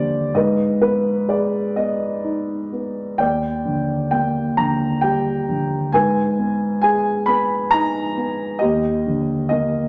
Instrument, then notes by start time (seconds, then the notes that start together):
grand piano
Already playing: D#2 D3 G3 A#3 C5 D5
0.34 G#2 B4 D#5
0.81 B3 B4
1.28 G#4 D5
1.76 B3 D#5
2.24 D#4
2.72 B3
3.18 D#2 D5 G5
3.65 D3
4.11 A#3 G5
4.57 D3 A#5
5.01 G3 G5
5.48 D3
5.93 G#2 B4 G#5
6.39 B3
6.82 G#4 G#5
7.26 B3 B5
7.71 D#4 A#5
8.17 B3
8.59 D#2 G4 D#5
9.07 D3
9.49 A#3 D#5